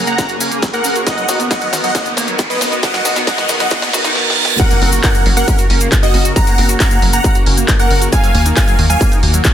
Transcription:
Already playing: F#1 C#3 A#3 G#4 A#4, riser
0.07 A#3 F#5 A#5, closed hi-hat, cabasa
0.18 C#3 A#3 C#4 G#4 A#4, kick, snare, closed hi-hat, cabasa
0.29 C#3 A#3 F#4 G#4 A#4, closed hi-hat, cabasa
0.40 F#1 C#4, open hi-hat, cabasa
0.51 C#3 A#3 G#4 A#4, closed hi-hat, cabasa
0.62 F#3, kick, snare, closed hi-hat, cabasa
0.73 C#3 A#3 G#4 A#4 F#5, closed hi-hat, cabasa
0.84 F#1 C#4, open hi-hat, cabasa
0.95 C#3 A#3 F#4 G#4 A#4, closed hi-hat, cabasa
1.07 D#3 B3 F#4 A#4 D#5 F#5, kick, snare, closed hi-hat, cabasa
1.18 F#3, closed hi-hat, cabasa
1.29 B1 D#3 B3 F#4 A#4, snare, open hi-hat, cabasa
1.40 B3, closed hi-hat, cabasa
1.51 D#3 A#3 B3 F#4 A#4 D#5 F#5, kick, snare, closed hi-hat, cabasa
1.61 F#3, closed hi-hat, cabasa
1.73 B1 D#3 B3 F#4 A#4, snare, open hi-hat, cabasa
1.84 F#3 D#5 F#5, closed hi-hat, cabasa
1.95 D#3 A#3 B3 F#4 A#4, kick, snare, closed hi-hat, cabasa
2.06 D#3 B3 F#4 A#4, closed hi-hat, cabasa
2.17 B1 A#3, snare, open hi-hat, cabasa
2.28 D#3 F#3 B3 F#4 A#4, closed hi-hat, cabasa
2.39 D#3, kick, snare, closed hi-hat, cabasa
2.50 D#3 F#3 B3 F#4 A#4 B4 D#5, closed hi-hat, cabasa
2.61 B1 A#3, snare, open hi-hat, cabasa
2.72 D#3 B3 F#4 A#4, closed hi-hat, cabasa
2.83 D#3 B3 F#4 A#4 D#5 F#5, kick, snare, closed hi-hat, cabasa
2.94 F#3, snare, closed hi-hat, cabasa
3.05 B1 D#3 B3 F#4 A#4, snare, open hi-hat, cabasa
3.16 B3, snare, closed hi-hat, cabasa
3.27 D#3 A#3 B3 F#4 A#4 D#5 F#5, kick, snare, closed hi-hat, cabasa
3.38 F#3, snare, closed hi-hat, cabasa
3.49 B1 D#3 B3 F#4 A#4, snare, open hi-hat, cabasa
3.60 F#3 D#5 F#5, snare, closed hi-hat, cabasa
3.70 D#3 A#3 B3 F#4 A#4, kick, snare, closed hi-hat, reverse cymbal, cabasa
3.82 D#3 B3 F#4 A#4, snare, closed hi-hat, cabasa
3.93 B1 F#4, snare, open hi-hat, cabasa
4.04 D#3 B3 D#4 F#4 A#4, snare, closed hi-hat, cabasa
4.15 snare
4.26 D#3 B3 F#4 A#4, snare
4.45 D#3 B3 F#4 A#4, snare
4.59 C#3 F#3 A#3 F#4 A#4 F#5, kick, closed hi-hat, crash, impact, cabasa
4.71 A#3, closed hi-hat, cabasa
4.82 F#1 C#3 A#3 C4 F#4 A#4, open hi-hat
4.92 F#4, closed hi-hat, cabasa
5.03 C#3 A#3 C#4 F#4 A#4 F#5, kick, clap, closed hi-hat, cabasa
5.15 A#3, closed hi-hat, cabasa
5.26 F#1 C#3 F#3 A#3 F#4 A#4, open hi-hat
5.37 A#3 A#4 F#5, closed hi-hat, cabasa
5.47 C#3 A#3 C#4 F#4 A#4, kick, closed hi-hat, cabasa
5.58 C#3 A#3 F#4 A#4, closed hi-hat, cabasa
5.70 F#1 C#4, open hi-hat
5.80 C#3 A#3 F#4 A#4, closed hi-hat, cabasa
5.92 F#3, kick, clap, closed hi-hat, cabasa
6.03 C#3 A#3 F#4 A#4 D#5, closed hi-hat, cabasa
6.14 F#1 C#4, open hi-hat
6.25 C#3 A#3 F#4 A#4, closed hi-hat, cabasa
6.36 C#3 F#3 A#3 F#4 A#4 F#5 A#5, kick, closed hi-hat, cabasa
6.47 A#3, closed hi-hat, cabasa
6.58 F#1 C#3 A#3 C4 F#4 A#4, open hi-hat
6.69 F#4, closed hi-hat, cabasa
6.80 C#3 A#3 C#4 F#4 A#4 F#5 A#5, kick, clap, closed hi-hat, cabasa
6.91 A#3, closed hi-hat, cabasa
7.02 F#1 C#3 F#3 A#3 F#4 A#4, open hi-hat
7.13 A#3 F#5 A#5, closed hi-hat, cabasa
7.24 C#3 A#3 C#4 F#4 A#4, kick, closed hi-hat, cabasa
7.35 C#3 A#3 F#4 A#4, closed hi-hat, cabasa
7.46 F#1 C#4, open hi-hat
7.57 C#3 A#3 F#4 A#4, closed hi-hat, cabasa
7.68 F#3, kick, clap, closed hi-hat, cabasa
7.79 C#3 A#3 F#4 A#4 F#5, closed hi-hat, cabasa
7.90 F#1 C#4, open hi-hat
8.02 C#3 A#3 F#4 A#4, closed hi-hat, cabasa
8.13 D#3 A#3 F#4 A#4 F5 G#5, kick, closed hi-hat, cabasa
8.24 F#3, closed hi-hat, cabasa
8.35 D#2 D#3 A#3 F#4 A#4, open hi-hat
8.46 D#4, closed hi-hat, cabasa
8.57 D#3 A#3 F#4 A#4 F5 G#5, kick, clap, closed hi-hat, cabasa
8.68 F#3, closed hi-hat, cabasa
8.79 D#2 D#3 A#3 F#4 A#4, open hi-hat
8.90 F#3 F5 G#5, closed hi-hat, cabasa
9.01 D#3 A#3 F#4 A#4, kick, closed hi-hat, cabasa
9.12 D#3 A#3 D#4 F#4 A#4, closed hi-hat, cabasa
9.23 D#2 A#3, open hi-hat
9.34 D#3 F#3 A#3 F#4 A#4, closed hi-hat, cabasa
9.44 D#3, kick, clap, closed hi-hat, cabasa

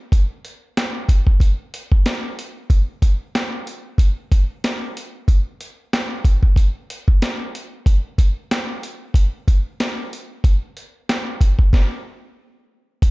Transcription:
0.12 kick, closed hi-hat
0.45 closed hi-hat
0.77 snare, closed hi-hat
1.09 kick, closed hi-hat
1.27 kick
1.40 kick, closed hi-hat
1.74 closed hi-hat
1.92 kick
2.06 snare, closed hi-hat
2.39 closed hi-hat
2.70 kick, closed hi-hat
3.02 kick, closed hi-hat
3.35 snare, closed hi-hat
3.67 closed hi-hat
3.98 kick, closed hi-hat
4.32 kick, closed hi-hat
4.64 snare, closed hi-hat
4.97 closed hi-hat
5.28 kick, closed hi-hat
5.61 closed hi-hat
5.93 snare, closed hi-hat
6.25 kick, closed hi-hat
6.43 kick
6.56 kick, closed hi-hat
6.90 closed hi-hat
7.08 kick
7.22 snare, closed hi-hat
7.55 closed hi-hat
7.86 kick, closed hi-hat
8.18 kick, closed hi-hat
8.51 snare, closed hi-hat
8.83 closed hi-hat
9.14 kick, closed hi-hat
9.48 kick, closed hi-hat
9.80 snare, closed hi-hat
10.13 closed hi-hat
10.44 kick, closed hi-hat
10.77 closed hi-hat
11.09 snare, closed hi-hat
11.41 kick, closed hi-hat
11.59 kick
11.73 kick, snare
13.02 kick, closed hi-hat

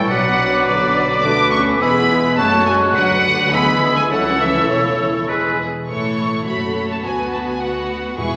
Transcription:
Already playing: E3 A4 C#6
0.10 B1 B2 F#3 B3 D4 F#4 B4 D5 F#5 D6
0.67 D3 B4 D5
0.96 A4
1.22 D2 A3 D4 F#4 A4 B4 D6
1.52 C#4 C#6
1.80 E1 E2 G#3 B3 E4 G#4 B5 E6
2.10 G#4
2.38 F#1 F#2 F#3 A3 C#4 F#4 A4 C#5 A5 F#6
2.66 G#3 G#5
2.95 D2 D3 F#3 D4 B4 F#5
3.52 E3 G#3 B3 E4 G#4 B5 E6
3.96 G#3 G#5
4.10 C#2 C#3 F#3 A3 A4 C#5 F#5
4.40 E3 E5
4.69 E1 E2 C#3 E4 C#5
5.29 G#3 G#4 B4
5.87 A1 A2 E3 A3 E4 A4 C#5 C#6
6.46 F#1 F#2 A3 F#4 A4 C#5 B5
6.91 A5
7.03 D2 B3 F#4 B4 G#5
7.33 A5
7.47 G#5
7.61 B3 F#4 B4 F#5
8.18 E1 E2 G#3 B3 E4 G#4 B4 C#6

